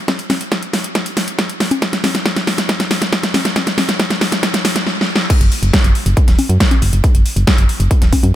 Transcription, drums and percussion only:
0.08 kick, snare, closed hi-hat, high conga
0.19 closed hi-hat
0.30 snare, open hi-hat, high conga
0.41 closed hi-hat
0.52 kick, snare, closed hi-hat
0.63 closed hi-hat
0.73 kick, snare, open hi-hat
0.84 closed hi-hat
0.95 kick, snare, closed hi-hat
1.06 closed hi-hat
1.17 snare, open hi-hat
1.28 closed hi-hat
1.39 kick, snare, closed hi-hat
1.49 closed hi-hat
1.60 snare, open hi-hat
1.71 closed hi-hat, high conga
1.82 kick, snare, closed hi-hat
1.93 snare, closed hi-hat
2.04 snare, open hi-hat, high conga
2.15 snare, closed hi-hat
2.26 kick, snare, closed hi-hat
2.36 snare, closed hi-hat
2.47 snare, open hi-hat
2.58 snare, closed hi-hat
2.69 kick, snare, closed hi-hat
2.80 snare, closed hi-hat
2.91 snare, open hi-hat
3.02 snare, closed hi-hat
3.13 kick, snare, closed hi-hat
3.23 snare, closed hi-hat
3.34 snare, open hi-hat, high conga
3.45 snare, closed hi-hat
3.56 kick, snare, closed hi-hat, high conga
3.67 snare, closed hi-hat
3.78 snare, open hi-hat, high conga
3.89 snare, closed hi-hat
4.00 kick, snare, closed hi-hat
4.10 snare, closed hi-hat
4.21 kick, snare, open hi-hat
4.32 snare, closed hi-hat
4.43 kick, snare, closed hi-hat
4.54 snare, closed hi-hat
4.65 snare, open hi-hat
4.76 snare, closed hi-hat
4.87 snare
5.01 snare
5.16 snare
5.30 kick, closed hi-hat, crash
5.41 closed hi-hat
5.52 open hi-hat
5.63 closed hi-hat
5.73 kick, snare, closed hi-hat
5.84 closed hi-hat
5.95 open hi-hat
6.06 closed hi-hat
6.17 kick, closed hi-hat
6.28 snare, closed hi-hat
6.39 open hi-hat, high conga
6.50 closed hi-hat
6.60 kick, snare, closed hi-hat
6.71 closed hi-hat, high conga
6.82 open hi-hat
6.93 closed hi-hat
7.04 kick, closed hi-hat
7.15 closed hi-hat
7.26 open hi-hat
7.37 closed hi-hat
7.47 kick, snare, closed hi-hat
7.58 closed hi-hat
7.69 open hi-hat
7.80 closed hi-hat
7.91 kick, closed hi-hat
8.02 snare, closed hi-hat
8.13 kick, open hi-hat, high conga
8.24 closed hi-hat, high conga

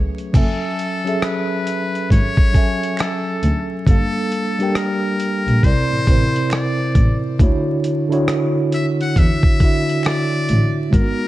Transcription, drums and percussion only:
0.18 closed hi-hat
0.34 kick, closed hi-hat, crash
0.79 closed hi-hat
1.07 closed hi-hat
1.22 finger snap, cross-stick, closed hi-hat
1.67 closed hi-hat
1.95 closed hi-hat
2.10 kick, closed hi-hat
2.37 kick
2.54 kick, closed hi-hat
2.83 closed hi-hat
2.97 finger snap, cross-stick, closed hi-hat
3.43 closed hi-hat
3.87 kick, closed hi-hat
4.32 closed hi-hat
4.60 closed hi-hat
4.75 finger snap, cross-stick, closed hi-hat
5.20 closed hi-hat
5.48 closed hi-hat
5.63 kick, closed hi-hat
6.07 kick, closed hi-hat
6.36 closed hi-hat
6.50 finger snap, cross-stick, closed hi-hat
6.95 kick, closed hi-hat
7.39 kick, closed hi-hat
7.84 closed hi-hat
8.12 closed hi-hat
8.28 finger snap, cross-stick, closed hi-hat
8.72 closed hi-hat
9.01 closed hi-hat
9.16 kick, closed hi-hat
9.43 kick
9.60 kick, closed hi-hat
9.89 closed hi-hat
10.03 finger snap, cross-stick, closed hi-hat
10.49 closed hi-hat
10.93 kick, closed hi-hat

